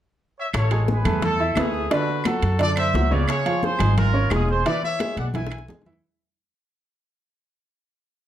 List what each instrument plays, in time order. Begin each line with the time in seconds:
0.38 trumpet section C#5 E5
0.53 upright bass A1, trumpet section A4 C#5, high bongo, high conga, high timbale, claves
0.71 upright piano G#3 G#4 G#5, high conga, high timbale
0.88 trumpet section G#4 B4, high bongo, high conga
1.05 upright bass E2, upright piano A3 A4 A5, high bongo, high conga, low conga, high timbale, claves
1.22 trumpet section E4 A4, high bongo, high conga, low conga, high timbale
1.39 upright piano E4 E5 E6, high bongo, high conga
1.55 upright bass D2, upright piano A3 B4 E5, trumpet section E4 G#4, high bongo, low bongo, high conga, high timbale, low timbale, claves
1.74 high bongo
1.91 upright piano D3 D4 D5, trumpet section F#4 B4, high bongo, high conga, high timbale
2.09 high conga
2.24 upright piano F#3 F#4 F#5, trumpet section F#4 A4, high bongo, high conga, high timbale, claves
2.42 upright bass F#2, high bongo, high conga, high timbale
2.59 upright piano D3 D4 D5, trumpet section A4 D5, high bongo, high conga, high timbale
2.76 trumpet section C5 E5, high bongo, high conga, high timbale, claves
2.94 upright bass C#2, upright piano F#3 F#4 F#5, high bongo, low bongo, high conga
3.11 upright piano C#3 C#4 C#5, trumpet section B4 D5, high conga
3.27 trumpet section G#4 C#5, high bongo, high conga, high timbale, claves
3.46 upright piano F3 F4 F5, high conga, high timbale
3.62 trumpet section G#4 C5, high bongo, high conga
3.79 upright bass G#1, upright piano G#3 G#4 G#5, high bongo, high conga, low conga, high timbale, claves
3.96 trumpet section F4 A#4, high bongo, high conga, low conga, high timbale
4.13 upright piano C#4 C#5 C#6, high bongo, high conga
4.30 upright bass E1, upright piano G#3 G#4 G#5, trumpet section F4 G#4, high bongo, low bongo, high conga, high timbale, claves
4.49 trumpet section G#4 C5, high bongo
4.66 upright piano E3 E4 E5, trumpet section B4 D5, high bongo, high conga, high timbale
4.83 trumpet section C#5 E5, high conga
4.99 upright piano G#3 G#4 G#5, high bongo, high conga, high timbale, claves
5.17 upright bass B1, trumpet section D5 F#5, high bongo, high conga, high timbale
5.34 upright piano E3 E4 E5, trumpet section E5 G#5, high bongo, low conga, high timbale
5.47 high bongo
5.51 high timbale, claves
5.58 high bongo
5.68 upright bass E2, upright piano G#3 G#4 G#5, low bongo, low conga, low timbale
5.82 low bongo
5.86 upright piano E3 E4 E5, low conga
5.93 low bongo